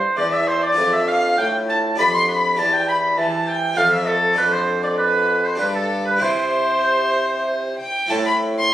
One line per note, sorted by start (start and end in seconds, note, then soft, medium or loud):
0.00 0.71 C4 soft
0.00 0.72 E4 soft
0.00 0.73 A4 soft
0.00 0.16 C5 medium
0.16 0.74 E2 medium
0.16 0.31 D5 medium
0.16 0.35 D5 medium
0.32 0.48 E5 medium
0.32 0.49 E5 medium
0.47 0.63 C5 medium
0.47 0.62 C5 medium
0.62 0.94 D5 medium
0.62 0.92 D5 medium
0.73 1.93 D4 soft
0.73 1.94 F4 soft
0.73 1.94 C5 soft
0.77 1.34 F2 medium
0.77 1.37 F2 medium
0.92 1.09 E5 medium
0.92 1.07 E5 medium
1.07 1.37 F5 medium
1.07 1.38 F5 medium
1.38 1.98 A2 medium
1.38 1.95 A2 medium
1.38 1.52 G5 medium
1.38 1.47 G5 medium
1.69 1.98 A5 medium
1.69 1.78 A5 medium
1.95 2.57 F2 medium
1.95 2.55 D4 medium
1.95 2.55 G4 medium
1.95 2.56 B4 soft
1.95 2.16 B5 loud
1.95 2.13 B5 medium
2.00 2.55 F2 medium
2.14 2.28 C6 medium
2.14 2.27 C6 medium
2.28 2.60 B5 medium
2.28 2.58 B5 medium
2.54 3.16 E2 medium
2.54 3.72 C4 medium
2.54 3.73 G4 medium
2.54 3.73 C5 medium
2.54 2.72 A5 loud
2.59 3.14 E2 medium
2.59 2.74 A5 medium
2.73 2.88 G5 medium
2.73 2.89 G5 medium
2.88 3.19 B5 loud
2.88 2.97 B5 medium
3.17 3.76 E3 medium
3.17 3.74 E3 medium
3.17 3.49 A5 medium
3.47 3.78 G5 medium
3.47 3.79 G5 medium
3.73 4.36 F2 medium
3.73 4.34 C4 medium
3.73 4.34 F4 medium
3.73 4.35 A4 medium
3.73 3.94 F5 loud
3.73 3.91 F5 medium
3.78 4.34 F2 medium
3.92 4.09 E5 medium
3.92 4.08 E5 medium
4.06 4.37 A4 medium
4.06 4.39 A4 medium
4.33 5.53 D4 medium
4.33 5.54 F4 medium
4.33 5.55 A4 medium
4.37 5.60 F2 medium
4.37 5.55 F2 medium
4.37 4.54 B4 loud
4.37 4.52 B4 medium
4.52 4.60 C5 medium
4.52 4.83 C5 medium
4.83 4.89 D5 medium
4.83 4.97 D5 medium
4.98 5.47 B4 medium
4.98 5.45 B4 medium
5.44 5.61 C5 medium
5.44 5.59 C5 medium
5.55 6.21 G2 medium
5.55 6.18 D4 medium
5.55 6.19 G4 medium
5.59 6.18 G2 medium
5.59 5.74 B4 medium
5.59 5.66 B4 medium
5.75 6.06 A4 medium
5.75 5.89 A4 medium
6.05 6.22 B4 medium
6.05 6.23 B4 medium
6.16 8.04 C4 soft
6.16 8.05 E4 soft
6.16 8.05 G4 soft
6.21 7.76 C3 medium
6.21 7.75 C3 medium
6.21 7.78 C5 medium
6.21 7.79 C5 loud
7.79 8.11 G5 medium
8.06 8.74 C4 medium
8.06 8.74 E4 soft
8.06 8.74 A4 medium
8.06 8.25 A5 medium
8.11 8.68 A2 medium
8.26 8.34 B5 medium
8.58 8.74 C6 medium